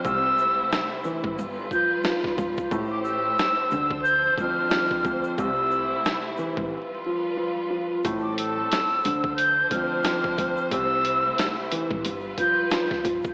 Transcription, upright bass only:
X:1
M:4/4
L:1/16
Q:"Swing 16ths" 1/4=90
K:C
V:1 name="Upright bass" clef=bass
C,,4 z3 A,,, G,,,2 z4 G,,, z | A,,,4 z2 D,,4 D,,2 z2 D,, z | C,,4 z3 A,,, z8 | A,,,4 z2 D,,4 D,,2 z2 D,, z |
C,,4 z3 A,,, G,,,2 z4 G,,, z |]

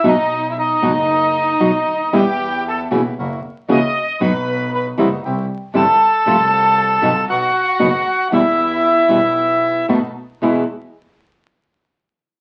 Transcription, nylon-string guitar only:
X:1
M:4/4
L:1/8
Q:1/4=116
K:Em
V:1 name="Nylon-string guitar"
[B,,F,B,^DF] z2 [B,,F,B,DF] z2 [B,,F,B,DF] z | [B,,E,G,B,E] z2 [^C,E,^A,^CF] z2 [C,E,A,CF] z | [B,,F,B,^DF] z2 [C,E,G,CE] z2 [C,E,G,CE] z | [C,=F,A,C=F] z2 [B,,^F,B,^D^F] z2 [B,,F,B,DF] z |
[B,,E,G,B,E] z2 [B,,E,G,B,E] z2 [B,,^D,A,B,F] z | [E,,B,,E,^G,B,E] z6 z |]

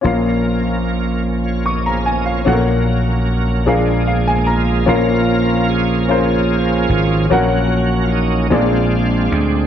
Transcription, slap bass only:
X:1
M:6/8
L:1/8
Q:3/8=50
K:Bbm
V:1 name="Slap bass" clef=bass
B,,,6 | B,,,3 B,,,3 | B,,,4- B,,, A,,, | B,,,3 B,,,2 =D,, |]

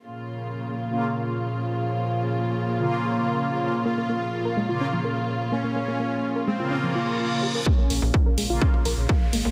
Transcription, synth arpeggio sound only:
X:1
M:4/4
L:1/16
Q:1/4=126
K:Bbm
V:1 name="Synth arpeggio sound"
z16 | z16 | B, B, B, z2 B A, F D F, B z3 B, B, | B, B, B, z2 B A, F D F, F z3 =G B |
B, B, B, z2 B A, F D F, B z3 B, B, |]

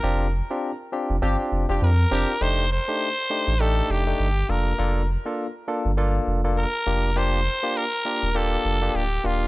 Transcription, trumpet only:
X:1
M:4/4
L:1/8
Q:"Swing 16ths" 1/4=101
K:Eblyd
V:1 name="Trumpet"
B z4 z B2 | c c3 A G2 B- | B z4 z B2 | c2 B2 A2 G F |]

